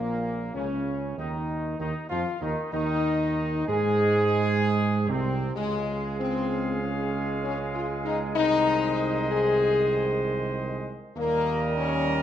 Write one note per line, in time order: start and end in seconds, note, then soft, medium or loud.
0.00 0.51 A#1 medium
0.00 0.51 A#2 medium
0.00 0.51 A#3 medium
0.54 1.14 C#2 medium
0.54 1.14 C#3 medium
0.54 1.13 C#4 medium
0.54 1.14 C#4 medium
1.17 1.75 D#2 medium
1.17 1.75 D#3 medium
1.17 1.76 D#4 medium
1.17 1.79 D#4 medium
1.79 1.93 D#2 medium
1.79 1.93 D#3 medium
1.79 2.08 D#4 medium
1.79 1.94 D#4 medium
2.10 2.25 F2 medium
2.10 2.24 F3 medium
2.10 2.39 F4 medium
2.41 2.55 D#2 medium
2.41 2.70 D#3 medium
2.41 2.55 D#4 medium
2.41 2.71 D#4 medium
2.72 3.64 D#2 medium
2.72 3.64 D#3 medium
2.72 3.64 D#4 medium
3.67 5.11 G#2 loud
3.67 5.05 G#3 medium
3.67 5.04 G#4 loud
3.67 5.09 G#4 loud
5.09 5.55 C2 medium
5.09 5.52 C3 medium
5.09 5.56 C4 medium
5.55 8.37 C#2 medium
5.55 8.31 C#3 medium
5.55 6.14 G#3 loud
5.55 10.99 G#3 medium
5.55 8.31 G#4 medium
5.55 8.31 F5 medium
6.19 6.77 C4 loud
6.82 7.43 C#4 medium
7.44 7.57 C#4 loud
7.74 7.87 F4 medium
8.04 8.18 D#4 loud
8.35 10.99 C2 medium
8.35 10.99 D#3 medium
8.35 9.27 D#4 loud
8.35 10.99 C5 medium
8.35 10.99 D#5 medium
9.30 10.66 G#4 loud
11.16 12.22 D#2 medium
11.16 12.22 A#2 medium
11.16 12.22 G3 medium
11.16 11.73 A#3 loud
11.16 12.22 A#4 loud
11.16 12.22 D#5 medium
11.77 12.22 C#4 loud